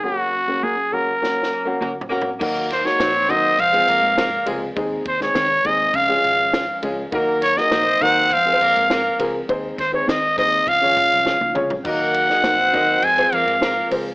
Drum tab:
CC |------------------------------------------------|x-----------------------------------------------|------------------------------------------------|------------------------------------------------|
RD |------------------------------------------------|------x-----x-----x-----x--x--x-----x-----x-----|x-----x-----x-----x-----x-----x-----x-----x-----|x-----x-----x-----x-----x-----x--x--x-----x-----|
HH |------------------------------------------------|------------------------------------------------|------------------------------------------------|------------------------------------------------|
SD |------------------------o---o-------------------|------o--o--o-----------------------o-----------|---------o--o-----------------------o-----------|------o--o--o-----------------------o-----------|
T1 |------------------------------------------------|------------------------------------------------|------------------------------------------------|------------------------------------------------|
T2 |------------------------------------o-----------|------------------------------------------------|------------------------------------------------|------------------------------------------------|
FT |----------------------------------------o---o---|------------------------------------------------|------------------------------------------------|------------------------------------------------|
BD |------------------------------------------------|o-----------------o-----o-----------------------|o-----o-----------o-----o-----------------------|o-----------------o-----o-----------------------|

CC |------------------------------------------------|x-----------------------------------------------|
RD |x-----x-----x-----x-----x-----x--x--------------|------x-----x-----x-----x--x--x--x--x-----x-----|
HH |------------------------------------------------|------------------------------------------o-----|
SD |------o-----o-----------------------o-----------|---------o--o-----------------------o-----------|
T1 |---------------------------------------o--------|------------------------------------------------|
T2 |------------------------------------------o-----|------------------------------------------------|
FT |---------------------------------------------o--|------------------------------------------------|
BD |o-----o-----------o-----o-----o-----------------|o-----------------o-----o-----------------------|